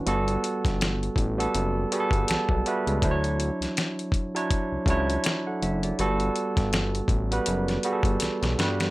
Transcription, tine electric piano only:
0.06 1.21 G3 medium
0.06 1.21 B3 loud
0.06 1.21 F#4 medium
0.06 1.22 A4 loud
1.38 1.85 G3 medium
1.38 1.86 B3 medium
1.38 1.86 F#4 medium
1.38 1.86 A4 loud
1.91 2.58 G3 medium
1.91 2.58 B3 medium
1.91 2.58 F#4 medium
1.91 2.00 G#4 medium
2.00 2.62 A4 loud
2.30 2.63 A5 medium
2.66 2.99 G3 medium
2.66 2.99 B3 medium
2.66 3.00 F#4 medium
2.66 3.00 B4 medium
2.66 3.01 E5 medium
3.03 4.17 F#3 loud
3.03 4.18 D4 medium
3.03 4.18 E4 medium
3.03 3.11 C5 medium
3.11 4.21 C#5 loud
4.35 4.82 F#3 medium
4.35 4.82 D4 medium
4.35 4.83 E4 medium
4.35 4.83 C#5 loud
4.88 5.87 F#3 medium
4.88 5.88 D4 medium
4.88 5.88 E4 medium
4.88 5.26 C#5 loud
5.47 5.62 A4 medium
5.47 5.62 F#5 medium
5.63 5.82 E5 medium
5.84 5.99 F#4 medium
5.84 6.18 D5 medium
5.99 7.13 G3 loud
5.99 7.14 B3 medium
5.99 7.14 F#4 loud
5.99 7.14 A4 loud
7.31 7.78 G3 medium
7.31 7.79 B3 medium
7.31 7.79 F#4 medium
7.31 7.79 B4 medium
7.84 8.50 G3 medium
7.84 8.51 B3 medium
7.84 8.51 F#4 medium
7.84 7.92 G#4 medium
7.93 8.54 A4 medium
8.59 8.90 G3 medium
8.59 8.90 B3 medium
8.59 8.90 F#4 medium
8.59 8.90 B4 medium

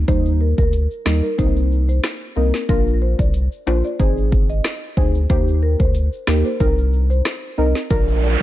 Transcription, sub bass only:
0.08 0.54 D#2 loud
0.58 0.87 D2 medium
1.06 1.21 D#2 loud
1.39 2.00 C2 loud
2.36 2.52 C2 medium
2.69 3.15 A#1 loud
3.19 3.48 C2 medium
3.67 3.82 A#1 medium
4.00 4.61 G#1 loud
4.97 5.27 D2 medium
5.30 5.76 D#2 loud
5.80 6.09 D2 medium
6.28 6.43 D#2 loud
6.60 7.21 C2 loud
7.58 7.74 C2 medium
7.91 8.36 A#1 loud

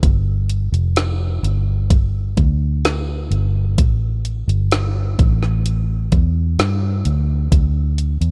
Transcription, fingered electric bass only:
0.03 0.69 G1 loud
0.72 1.39 F1 medium
1.43 2.33 G1 medium
2.37 3.27 D2 medium
3.31 3.78 G1 medium
3.78 4.44 A1 loud
4.48 5.14 G1 medium
5.19 6.08 A1 loud
6.12 6.56 E2 loud
6.59 7.02 G2 medium
7.05 7.49 D2 loud
7.52 8.17 D2 loud
8.21 8.31 E2 medium

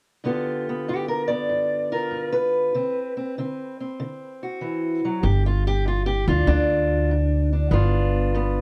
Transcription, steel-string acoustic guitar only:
0.24 0.82 G2 medium
0.24 2.73 D3 soft
0.24 0.67 B3 soft
0.24 1.91 F4 soft
0.24 0.87 G4 soft
0.69 1.28 B3 soft
0.88 1.46 G2 medium
0.88 1.08 G4 medium
1.08 1.29 A#4 medium
1.28 2.72 B3 soft
1.28 1.90 D5 medium
1.49 2.07 G2 medium
1.92 2.72 F4 soft
1.92 2.32 A#4 medium
2.11 2.69 G2 medium
2.33 4.42 B4 medium
2.75 3.32 D3 medium
2.75 3.16 C4 soft
3.17 3.37 C4 soft
3.38 3.95 D3 medium
3.38 3.79 C4 soft
3.80 5.22 C4 soft
4.00 4.57 D3 medium
4.43 5.22 F#4 soft
4.61 5.03 E3 medium
5.05 5.24 F#3 medium
5.23 5.81 G2 medium
5.23 5.44 G4 medium
5.46 5.66 F4 medium
5.67 5.86 G4 medium
5.86 6.43 G2 medium
5.86 6.06 F4 medium
6.06 6.27 G4 medium
6.29 6.47 D4 soft
6.29 7.10 F4 medium
6.48 7.07 G2 medium
6.48 7.51 D4 medium
7.11 7.68 G2 medium
7.53 7.73 D4 soft
7.71 8.29 G2 medium
7.71 8.35 B3 medium
7.71 8.61 D4 medium
7.71 8.61 F4 medium
8.34 8.61 G2 medium
8.34 8.61 B3 medium

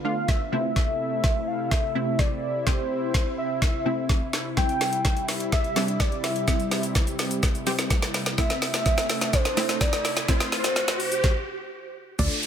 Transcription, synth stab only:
0.04 0.40 A3 medium
0.04 0.40 D4 medium
0.04 0.40 F4 medium
0.52 1.28 C3 medium
0.52 1.29 A3 medium
0.52 1.29 C4 medium
0.52 1.29 E4 medium
1.95 2.31 C3 medium
1.95 2.31 A3 medium
1.95 2.31 C4 medium
1.95 2.31 E4 medium
2.66 3.14 C3 medium
2.66 3.14 A3 medium
2.66 3.14 C4 medium
2.66 3.14 G4 medium
3.85 4.21 C3 medium
3.85 4.21 A3 medium
3.85 4.21 C4 medium
3.85 4.21 E4 medium
4.57 5.04 G3 medium
4.57 5.05 C4 medium
4.57 5.05 E4 medium
5.76 6.12 G3 medium
5.76 6.12 C4 medium
5.76 6.12 D4 medium
6.47 6.95 G3 medium
6.47 6.95 C4 medium
6.47 6.95 E4 medium
7.66 8.02 G3 medium
7.66 8.02 C4 medium
7.66 8.02 G4 medium
8.38 8.85 A3 medium
8.38 8.86 C4 medium
8.38 8.86 E4 medium
9.57 9.93 A3 medium
9.57 9.93 C4 medium
9.57 9.93 E4 medium
10.28 10.76 A3 medium
10.28 10.76 C4 medium
10.28 10.76 E4 medium
12.19 12.47 A3 medium
12.19 12.47 D4 medium
12.19 12.47 F4 medium
12.19 12.47 A4 medium

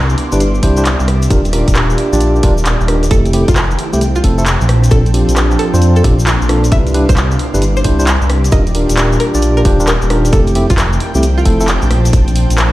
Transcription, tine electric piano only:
0.33 0.41 D4 medium
0.33 0.41 E4 medium
0.33 0.41 G4 medium
0.33 0.41 B4 loud
0.63 0.75 D4 loud
0.63 0.75 E4 medium
0.63 0.75 G4 medium
0.63 0.75 C5 loud
0.78 0.83 D4 medium
0.78 0.83 E4 medium
0.78 0.83 G4 medium
0.78 0.83 C5 loud
1.30 1.40 D4 medium
1.30 1.40 F4 medium
1.30 1.40 G4 medium
1.30 1.40 A#4 medium
1.53 2.09 D4 medium
1.53 2.09 F4 medium
1.53 2.09 G4 medium
1.53 2.09 A#4 medium
2.13 2.41 D4 loud
2.13 2.41 F4 medium
2.13 2.41 G4 medium
2.13 2.41 D5 loud
2.43 2.53 D4 medium
2.43 2.53 F4 medium
2.43 2.53 G4 medium
2.43 2.53 A#4 loud
2.88 3.04 D4 medium
2.88 3.04 F4 medium
2.88 3.04 G4 medium
2.88 3.04 A#4 medium
3.11 3.32 A3 medium
3.11 3.32 C4 medium
3.11 3.32 E4 medium
3.11 3.32 G4 medium
3.33 3.43 A3 medium
3.33 3.43 C4 medium
3.33 3.43 E4 medium
3.33 3.43 G4 loud
3.93 4.02 A3 medium
3.93 4.02 C4 medium
3.93 4.02 E4 medium
3.93 4.02 G4 loud
4.24 4.36 A3 loud
4.24 4.36 C4 medium
4.24 4.36 E4 medium
4.24 4.36 A4 loud
4.38 4.44 A3 medium
4.38 4.44 C4 medium
4.38 4.44 E4 medium
4.38 4.44 A4 loud
4.91 5.01 C4 medium
4.91 5.01 D4 medium
4.91 5.01 F4 medium
4.91 5.01 A4 medium
5.14 5.70 C4 medium
5.14 5.70 D4 medium
5.14 5.70 F4 medium
5.14 5.70 G4 medium
5.74 6.02 C4 loud
5.74 6.02 D4 medium
5.74 6.02 F4 medium
5.74 6.02 C5 loud
6.04 6.14 C4 medium
6.04 6.14 D4 medium
6.04 6.14 F4 medium
6.04 6.14 G4 loud
6.49 6.64 C4 medium
6.49 6.64 D4 medium
6.49 6.64 F4 medium
6.49 6.64 A4 medium
6.72 6.92 D4 medium
6.72 6.92 E4 medium
6.72 6.92 G4 medium
6.72 6.92 B4 medium
6.94 7.04 D4 medium
6.94 7.04 E4 medium
6.94 7.04 G4 medium
6.94 7.04 B4 loud
7.54 7.63 D4 medium
7.54 7.63 E4 medium
7.54 7.63 G4 medium
7.54 7.63 B4 loud
7.85 7.97 D4 loud
7.85 7.97 E4 medium
7.85 7.97 G4 medium
7.85 7.97 C5 loud
7.99 8.04 D4 medium
7.99 8.04 E4 medium
7.99 8.04 G4 medium
7.99 8.04 C5 loud
8.52 8.62 D4 medium
8.52 8.62 F4 medium
8.52 8.62 G4 medium
8.52 8.62 A#4 loud
8.75 9.31 D4 medium
8.75 9.31 F4 medium
8.75 9.31 G4 medium
8.75 9.31 A#4 medium
9.35 9.63 D4 loud
9.35 9.63 F4 medium
9.35 9.63 G4 medium
9.35 9.63 D5 loud
9.65 9.78 D4 loud
9.65 9.78 F4 medium
9.65 9.78 G4 medium
9.65 9.78 C5 loud
9.80 9.88 D4 medium
9.80 9.88 F4 medium
9.80 9.88 G4 medium
9.80 9.88 A#4 loud
10.10 10.31 D4 medium
10.10 10.31 F4 medium
10.10 10.31 G4 medium
10.10 10.31 A#4 loud
10.33 10.54 A3 medium
10.33 10.54 C4 medium
10.33 10.54 E4 medium
10.33 10.54 G4 medium
10.55 10.65 A3 medium
10.55 10.65 C4 medium
10.55 10.65 E4 medium
10.55 10.65 G4 loud
11.15 11.24 A3 medium
11.15 11.24 C4 medium
11.15 11.24 E4 medium
11.15 11.24 G4 loud
11.46 11.58 A3 loud
11.46 11.58 C4 medium
11.46 11.58 E4 medium
11.46 11.58 A4 loud
11.60 11.65 A3 medium
11.60 11.65 C4 medium
11.60 11.65 E4 medium
11.60 11.65 A4 loud

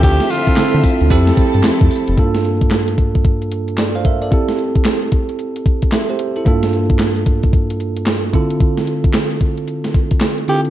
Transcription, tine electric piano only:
0.00 0.33 C4 medium
0.00 0.33 E4 medium
0.00 0.33 F4 medium
0.00 0.33 A4 medium
0.47 0.55 C4 medium
0.47 0.55 E4 medium
0.47 0.56 F4 medium
0.47 0.56 A4 medium
0.57 1.09 C4 medium
0.57 1.09 E4 medium
0.57 1.11 F4 medium
0.57 1.10 A4 medium
1.10 2.02 C4 loud
1.10 2.02 E4 medium
1.10 2.02 G4 medium
1.10 2.02 A4 loud
2.17 4.01 G2 medium
2.17 4.01 A#3 medium
2.17 4.02 D4 medium
2.17 4.02 F4 medium
2.17 3.76 A4 medium
3.79 3.95 A4 soft
3.79 3.95 D5 medium
3.95 4.05 C5 medium
3.95 4.05 F5 medium
4.05 4.21 A#4 medium
4.05 4.21 E5 medium
4.22 4.32 A4 soft
4.22 4.47 D5 medium
4.31 6.42 C4 medium
4.31 5.63 E4 medium
4.31 5.63 G4 medium
4.31 5.64 A4 medium
5.93 6.09 A4 soft
5.93 6.09 E5 medium
6.10 6.35 G4 medium
6.10 6.35 C5 medium
6.36 6.62 E4 medium
6.36 6.46 A4 medium
6.45 8.29 G2 medium
6.45 8.30 A#3 medium
6.45 8.30 D4 medium
6.45 8.30 F4 medium
6.45 8.31 A4 medium
8.33 10.44 D3 medium
8.33 10.44 C4 medium
8.33 10.44 E4 medium
8.33 10.45 F4 medium
8.33 10.45 A4 medium
10.48 10.70 D3 medium
10.48 10.70 C4 medium
10.48 10.70 E4 medium
10.48 10.70 F4 medium
10.48 10.70 A4 medium

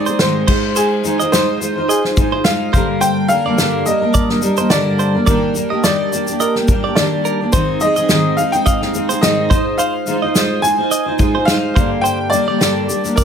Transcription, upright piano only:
0.00 0.16 D5 loud
0.20 0.78 C5 medium
0.77 1.34 G#4 medium
1.32 1.90 C5 loud
1.89 2.41 G#4 medium
2.44 3.03 F5 loud
3.01 3.30 G5 loud
3.28 3.82 F5 loud
3.86 4.73 D#5 loud
4.70 5.23 D5 loud
5.26 5.85 A#4 medium
5.84 6.42 D5 loud
6.40 6.98 A#4 medium
6.95 7.54 D5 medium
7.52 7.79 C5 medium
7.81 8.39 D#5 loud
8.37 8.52 F5 medium
8.52 8.66 G5 medium
8.66 9.18 F5 medium
9.21 9.74 D#5 medium
9.78 10.30 F5 medium
10.62 11.43 G#5 loud
11.45 11.99 F5 loud
12.01 12.29 G5 loud
12.30 13.12 D5 loud
13.16 13.24 A#4 medium

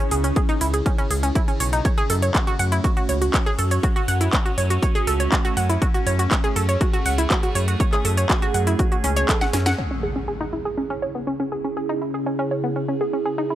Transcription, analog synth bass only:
0.11 0.32 C#2 loud
0.61 0.82 C#2 loud
1.10 1.31 C#2 loud
1.60 1.81 B1 loud
2.10 2.30 F#2 loud
2.59 2.80 F#2 loud
3.09 3.30 C#2 medium
3.58 3.79 F#2 loud
4.08 4.29 F#2 loud
4.58 4.78 F#2 loud
5.07 5.28 C#2 medium
5.57 5.77 F#2 loud
6.06 6.27 F#2 loud
6.56 6.77 F#2 loud
7.06 7.26 C#2 medium
7.55 7.76 F#2 loud
8.05 8.25 F#2 loud
8.54 8.75 F#2 loud
9.04 9.25 C#2 medium
9.54 9.74 F#2 loud

